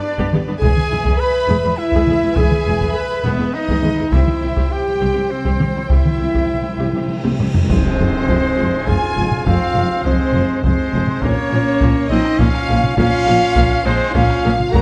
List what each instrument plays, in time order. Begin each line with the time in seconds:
Already playing: violin section B4 D5
0.00 french horn section D4, trumpet D4, violin section D5, flute D5
0.18 cello section G2, viola section B3 G4, taiko
0.33 double bass section G1, cello section G2, viola section B3 G4, taiko mid
0.47 cello section G2, viola section B3 D4
0.59 cello section E2, viola section G#3, french horn section G#4, trumpet G#4, violin section B4 E5 G#5, flute G#5, taiko
0.63 double bass section E1, viola section G#4
0.77 taiko mid
0.91 double bass section E1, cello section E2, viola section G#3 E4
1.03 cello section E2, viola section G#3 G#4, taiko
1.18 french horn section B4, trumpet B4, violin section B5, flute B5
1.48 double bass section E1, cello section E2, viola section G#3 G#4
1.64 cello section E2, viola section G#3 G#4
1.76 french horn section E4, trumpet E4, violin section E5, flute E5
1.92 cello section E2, viola section G#3 G#4, taiko
2.07 double bass section E1, cello section E2, viola section G#3 G#4, taiko mid
2.23 cello section E2, viola section G#3 E4
2.36 double bass section E1, cello section E2, viola section G#3 G#4, trumpet G#4, french horn section G#4, violin section G#5, flute G#5, taiko
2.51 taiko mid
2.66 double bass section E1, cello section E2, viola section G#3 E4
2.81 cello section E2, viola section G#3 G#4, taiko
2.94 french horn section B4, trumpet B4, violin section B5, flute B5
3.23 double bass section E1, cello section E2, viola section G#3 G#4, trumpet B3, french horn section B3, violin section B4, flute B4
3.39 cello section E2, viola section G#3 G#4
3.53 trumpet D#4, french horn section D#4, violin section D#5, flute D#5
3.69 cello section E2, viola section G#3 G#4, taiko
3.83 double bass section E1, cello section E2, viola section G#3 G#4, taiko mid
3.98 cello section E2, viola section G#3 E4
4.11 double bass section C2, cello section C2, viola section C4 G4, trumpet E4, french horn section E4, violin section C5 E5 G5, flute E5, taiko
4.28 taiko mid
4.42 double bass section C2, cello section C2, timpani C3, viola section C4 E4
4.50 timpani C3
4.56 cello section C2, viola section C4 G4, taiko
4.65 timpani C3
4.70 timpani C3, french horn section G4, trumpet G4, flute G5, violin section G5
4.80 timpani C3
4.88 timpani C3
4.95 timpani C3
5.01 double bass section C2, cello section C2, timpani C3, viola section C4 G4
5.09 timpani C3
5.14 cello section C2, timpani C3, viola section C4 G4
5.24 timpani C3
5.28 trumpet C4, french horn section C4, violin section C5, flute C5
5.33 timpani C3
5.40 timpani C3
5.44 cello section C2, timpani C3, viola section C4 G4, taiko
5.55 timpani C3
5.59 cello section C2, double bass section C2, viola section C4 G4, taiko mid
5.63 timpani C3
5.70 timpani C3
5.75 cello section C2, timpani C3, viola section C4 E4
5.85 timpani C3
5.90 double bass section C2, cello section C2, viola section C4 G4, trumpet E4, french horn section E4, violin section E5, flute E5, taiko, cymbal swell
5.94 timpani C3
6.01 timpani C3, taiko mid
6.09 timpani C3
6.16 timpani C3
6.20 double bass section C2, cello section C2, viola section C4 E4
6.25 timpani C3
6.32 cello section C2, timpani C3, viola section C4 G4, taiko
6.39 timpani C3
6.46 timpani C3
6.54 timpani C3
6.62 timpani C3
6.69 timpani C3
6.77 double bass section C2, timpani C3, viola section C4 G4
6.81 cello section C2
6.85 timpani C3
6.93 cello section C2, timpani C3, viola section C4 G4
7.01 timpani C3
7.08 timpani C3
7.16 timpani C3
7.23 cello section C2, timpani C3, viola section C4 G4, taiko high
7.31 timpani C3
7.38 double bass section C2, cello section C2, timpani C3, viola section C4 G4, taiko low-mid
7.46 timpani C3
7.54 cello section C2, timpani C3, viola section C4 E4, taiko low
7.62 timpani C3
7.69 double bass section F1, timpani F2, cello section F2, viola section F3 G#3, trumpet G#3, french horn section C4, violin section C5, flute C5, taiko, tam-tam, impact
7.99 double bass section F1, cello section F2, viola section F3 G#3
8.28 double bass section F1, cello section F2, viola section F3 G#3, taiko
8.57 double bass section F1, cello section F2, viola section F3 G#3
8.86 double bass section F1, cello section F2, viola section F3 G#3, trumpet F4, french horn section G#4, violin section G#5, flute G#5, taiko
9.16 double bass section F1, cello section F2, viola section F3 G#3
9.31 taiko low-mid
9.44 double bass section F1, viola section F3 G#3, trumpet C4, french horn section F4, violin section F5, flute F5, taiko
9.48 cello section F2
9.75 double bass section F1, cello section F2, viola section F3 G#3
10.04 double bass section F1, cello section F2, viola section F3 G#3, trumpet G#3, french horn section C4, violin section C5, flute C5, taiko
10.33 double bass section F1, cello section F2, viola section F3 G#3
10.61 double bass section F1, cello section F2, viola section F3 G#3, trumpet G#3, french horn section C4, violin section C5, flute C5, taiko
10.93 double bass section F1, cello section F2, viola section F3 G#3
11.07 taiko low-mid
11.22 double bass section A#1, cello section A#2, viola section F3 A#3, trumpet A#3, french horn section C#4, flute C#5, violin section C#5, taiko
11.52 double bass section A#1, cello section A#2, viola section F3 A#3
11.81 double bass section A#1, cello section A#2, viola section F3 A#3, taiko
12.09 double bass section A#1, cello section A#2, viola section F3 A#3, trumpet C4, french horn section D#4, violin section D#5, flute D#5
12.25 taiko rim
12.38 double bass section A#1, cello section A#2, viola section F3 A#3, trumpet C#4, french horn section F4, flute F5, violin section F5, taiko
12.55 taiko rim
12.68 double bass section A#1, cello section A#2, viola section F3 A#3
12.84 taiko low-mid
12.96 double bass section A#1, cello section A#2, viola section F3 A#3, trumpet C#4, french horn section F4, flute F5, violin section F5, taiko
13.26 double bass section A#1, cello section A#2, viola section F3 A#3
13.55 double bass section A#1, cello section A#2, viola section F3 A#3, taiko
13.84 double bass section A#1, cello section A#2, viola section F3 A#3, trumpet G#3, french horn section C4, violin section C5, flute C5
14.13 double bass section A#1, cello section A#2, viola section F3 A#3, trumpet C#4, french horn section F4, violin section F5, flute F5, taiko
14.30 taiko rim
14.45 double bass section A#1, cello section A#2, viola section F3 A#3
14.60 taiko low-mid
14.72 double bass section F#1, cello section F#2, viola section F#3 A#3, trumpet F#4, french horn section A#4, flute A#5, violin section A#5, taiko